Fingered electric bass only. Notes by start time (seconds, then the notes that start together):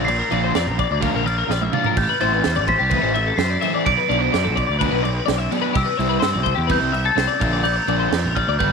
Already playing: A#1
0.32 A#1
0.55 F2
0.67 A#1
0.91 D2
1.14 A#1
1.49 A#1
1.97 A1
2.21 A1
2.46 E2
2.56 A1
2.80 C2
3.03 A1
3.38 F#2
3.86 B1
4.10 B1
4.34 F#2
4.45 B1
4.69 D2
4.93 B1
5.29 B1
5.75 C2
5.99 C2
6.22 G2
6.34 C2
6.58 E2
6.81 C2
7.17 C2
7.41 A#1
7.88 A#1
8.12 F2
8.24 A#1
8.48 D2
8.60 G1